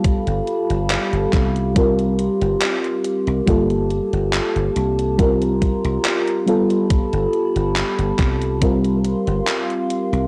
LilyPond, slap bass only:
\new Staff \with { instrumentName = "Slap bass" } { \clef bass \time 4/4 \key c \mixolydian \tempo 4 = 70 r16 g,,16 r16 g,,16 r16 g,,16 c,4 r16 g,,16 r8. c,16 | g,,8 r16 g,,16 r16 g,,16 c,4 r16 c,16 r4 | r16 g,,16 r16 g,,16 r16 g,,16 c,4 r16 g,,16 r8. c,16 | }